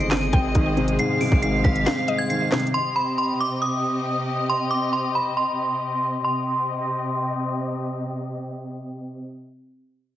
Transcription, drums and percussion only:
0.00 closed hi-hat
0.11 snare, clap, closed hi-hat
0.33 kick, closed hi-hat
0.55 kick, closed hi-hat
0.77 closed hi-hat
0.88 closed hi-hat
0.99 closed hi-hat
1.21 open hi-hat
1.32 kick
1.43 closed hi-hat
1.65 kick, cross-stick, closed hi-hat
1.76 closed hi-hat
1.86 snare, clap, closed hi-hat
2.08 closed hi-hat
2.30 closed hi-hat
2.52 cross-stick, snare, clap, closed hi-hat
2.60 closed hi-hat
2.67 closed hi-hat

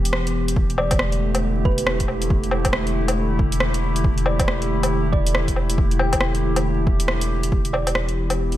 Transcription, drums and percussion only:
0.05 closed hi-hat
0.13 cross-stick
0.27 closed hi-hat
0.48 closed hi-hat
0.56 kick
0.70 closed hi-hat
0.78 low woodblock
0.91 kick, closed hi-hat, low woodblock
0.99 cross-stick
1.12 closed hi-hat
1.35 closed hi-hat, low woodblock
1.65 kick
1.78 closed hi-hat
1.87 cross-stick
2.00 kick, closed hi-hat
2.08 low woodblock
2.22 closed hi-hat
2.30 kick
2.44 closed hi-hat
2.51 low woodblock
2.65 kick, closed hi-hat, low woodblock
2.73 cross-stick
2.87 closed hi-hat
3.08 closed hi-hat, low woodblock
3.39 kick
3.52 closed hi-hat
3.60 cross-stick
3.74 closed hi-hat
3.96 closed hi-hat
4.04 kick
4.18 closed hi-hat
4.26 low woodblock
4.39 kick, closed hi-hat, low woodblock
4.48 cross-stick
4.62 closed hi-hat
4.83 closed hi-hat, low woodblock
5.13 kick
5.26 closed hi-hat
5.35 cross-stick
5.48 kick, closed hi-hat
5.56 low woodblock
5.70 closed hi-hat
5.78 kick
5.91 closed hi-hat
5.99 low woodblock
6.13 kick, closed hi-hat, low woodblock
6.21 cross-stick
6.35 closed hi-hat
6.56 closed hi-hat, low woodblock
6.87 kick
7.00 closed hi-hat
7.08 cross-stick
7.21 closed hi-hat
7.43 closed hi-hat
7.52 kick
7.65 closed hi-hat
7.74 low woodblock
7.87 closed hi-hat, low woodblock
7.95 cross-stick
8.09 closed hi-hat
8.30 closed hi-hat, low woodblock
8.52 closed hi-hat

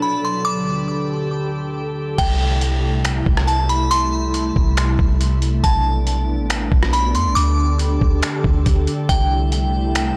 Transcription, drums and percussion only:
2.18 kick, closed hi-hat, crash
2.61 closed hi-hat
3.05 finger snap, closed hi-hat
3.26 kick
3.37 cross-stick
3.48 closed hi-hat
3.69 closed hi-hat
3.91 closed hi-hat
4.34 closed hi-hat
4.56 kick
4.77 finger snap, closed hi-hat
4.99 kick
5.21 closed hi-hat
5.42 closed hi-hat
5.64 kick, closed hi-hat
6.07 closed hi-hat
6.50 finger snap, closed hi-hat
6.72 kick
6.83 cross-stick
6.93 closed hi-hat
7.15 closed hi-hat
7.36 closed hi-hat
7.79 closed hi-hat
8.01 kick
8.23 finger snap, closed hi-hat
8.44 kick
8.66 kick, closed hi-hat
8.87 closed hi-hat
9.09 kick, closed hi-hat
9.52 closed hi-hat
9.95 finger snap, closed hi-hat

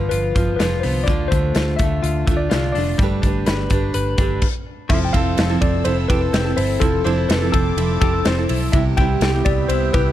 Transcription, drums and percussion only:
0.11 closed hi-hat
0.36 kick, closed hi-hat
0.60 snare, closed hi-hat
0.83 open hi-hat
1.07 kick, closed hi-hat
1.32 kick, closed hi-hat
1.55 snare, closed hi-hat
1.79 kick, closed hi-hat
2.04 closed hi-hat
2.27 kick, closed hi-hat
2.51 snare, closed hi-hat
2.75 open hi-hat
2.99 kick, closed hi-hat
3.23 kick, closed hi-hat
3.46 snare, closed hi-hat
3.70 kick, closed hi-hat
3.94 closed hi-hat
4.18 kick, closed hi-hat
4.42 kick, crash
4.89 kick, crash
5.14 kick, ride
5.38 snare, ride
5.62 kick, ride
5.85 ride
6.10 kick, ride
6.34 snare, ride
6.58 open hi-hat, ride
6.81 kick, hi-hat pedal, ride
7.07 ride
7.30 snare, ride
7.54 kick, ride
7.78 ride
8.01 kick, ride
8.25 snare, ride
8.49 open hi-hat, ride
8.73 kick, hi-hat pedal, ride
8.97 kick, ride
9.21 snare, ride
9.46 kick, ride
9.69 ride
9.94 kick, ride

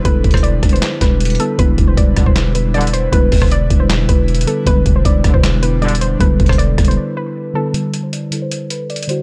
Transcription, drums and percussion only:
0.05 kick, closed hi-hat
0.24 kick, closed hi-hat, open hi-hat
0.31 kick, cross-stick, closed hi-hat
0.37 closed hi-hat
0.44 closed hi-hat
0.63 kick, cross-stick, closed hi-hat
0.69 closed hi-hat
0.76 closed hi-hat
0.82 snare, clap, closed hi-hat
1.01 kick, snare, closed hi-hat
1.20 closed hi-hat
1.25 closed hi-hat
1.30 closed hi-hat
1.35 closed hi-hat
1.40 closed hi-hat
1.59 kick, closed hi-hat
1.78 kick, closed hi-hat
1.97 kick, closed hi-hat
2.16 kick, cross-stick, closed hi-hat
2.26 kick
2.36 snare, clap, closed hi-hat
2.55 closed hi-hat
2.74 closed hi-hat
2.81 closed hi-hat
2.87 closed hi-hat
2.94 closed hi-hat
3.13 kick, closed hi-hat
3.32 kick, open hi-hat
3.42 kick, cross-stick
3.51 closed hi-hat
3.70 kick, closed hi-hat
3.90 snare, clap, closed hi-hat
4.09 kick, closed hi-hat
4.28 closed hi-hat
4.35 closed hi-hat
4.41 closed hi-hat
4.47 closed hi-hat
4.67 kick, closed hi-hat
4.86 kick, closed hi-hat
5.05 kick, closed hi-hat
5.24 kick, cross-stick, closed hi-hat
5.34 kick
5.44 snare, clap, closed hi-hat
5.63 closed hi-hat
5.82 closed hi-hat
5.88 closed hi-hat
5.95 closed hi-hat
6.01 closed hi-hat
6.21 kick, closed hi-hat
6.40 kick, closed hi-hat, open hi-hat
6.46 kick, cross-stick, closed hi-hat
6.53 closed hi-hat
6.59 closed hi-hat
6.78 kick, cross-stick, closed hi-hat
6.85 closed hi-hat
6.91 closed hi-hat
7.74 closed hi-hat
7.94 closed hi-hat
8.13 closed hi-hat
8.32 closed hi-hat
8.51 closed hi-hat
8.70 closed hi-hat
8.90 closed hi-hat
8.96 closed hi-hat
9.03 closed hi-hat
9.09 closed hi-hat

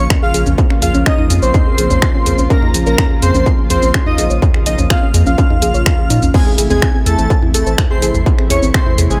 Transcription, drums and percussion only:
0.10 finger snap, kick, mid tom, shaker
0.34 open hi-hat, shaker
0.46 mid tom, shaker
0.58 kick, shaker
0.70 finger snap
0.82 mid tom, open hi-hat, shaker
0.94 shaker
1.06 finger snap, kick, shaker
1.18 mid tom
1.30 open hi-hat, shaker
1.42 shaker
1.54 kick, mid tom, shaker
1.78 open hi-hat, shaker
1.90 mid tom, shaker
2.02 finger snap, kick, shaker
2.26 mid tom, open hi-hat, shaker
2.38 shaker
2.50 kick, shaker
2.62 mid tom
2.74 open hi-hat, shaker
2.86 shaker
2.98 finger snap, kick, mid tom, shaker
3.22 open hi-hat, shaker
3.34 mid tom, shaker
3.46 kick, shaker
3.70 mid tom, open hi-hat, shaker
3.82 shaker
3.94 finger snap, kick, shaker
4.06 mid tom
4.18 open hi-hat, shaker
4.30 shaker
4.42 kick, mid tom, shaker
4.54 finger snap
4.66 open hi-hat, shaker
4.78 mid tom, shaker
4.90 finger snap, kick, shaker
5.14 mid tom, open hi-hat, shaker
5.26 shaker
5.38 kick, shaker
5.50 mid tom
5.62 open hi-hat, shaker
5.74 shaker
5.86 finger snap, kick, mid tom, shaker
6.10 open hi-hat, shaker
6.22 mid tom, shaker
6.34 kick, mid tom, crash, shaker
6.58 open hi-hat, shaker
6.70 mid tom, shaker
6.82 finger snap, kick, shaker
7.06 mid tom, open hi-hat, shaker
7.19 shaker
7.30 kick, shaker
7.42 mid tom
7.54 open hi-hat, shaker
7.67 shaker
7.78 finger snap, kick, mid tom, shaker
8.02 open hi-hat, shaker
8.14 mid tom, shaker
8.26 kick, shaker
8.39 finger snap
8.50 mid tom, open hi-hat, shaker
8.63 shaker
8.74 finger snap, kick, shaker
8.86 mid tom
8.98 open hi-hat, shaker
9.11 shaker

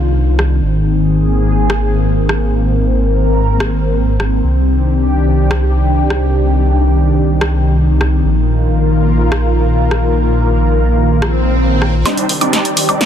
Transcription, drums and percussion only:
0.39 cross-stick
1.70 cross-stick
2.29 cross-stick
3.60 cross-stick
4.20 cross-stick
5.51 cross-stick
6.10 cross-stick
7.41 cross-stick
8.01 cross-stick
9.32 cross-stick
9.91 cross-stick
11.22 cross-stick
11.82 cross-stick
12.06 snare, closed hi-hat
12.17 closed hi-hat
12.29 open hi-hat
12.41 closed hi-hat
12.53 snare, closed hi-hat
12.65 closed hi-hat
12.77 open hi-hat
12.89 closed hi-hat
13.01 snare, closed hi-hat

